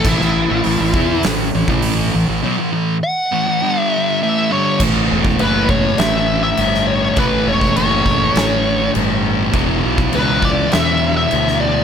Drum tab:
CC |x---------------|----------------|x---x---x---x---|x---x---x---x---|
HH |----o---o---o---|----------------|----------------|----------------|
SD |-o------o-------|----------------|--------o----o--|--------o-------|
BD |o-----o----o----|----------------|o--o--o---------|o--o--o---------|

CC |x---x---x---x---|
HH |----------------|
SD |--------o----o--|
BD |o--o--o---------|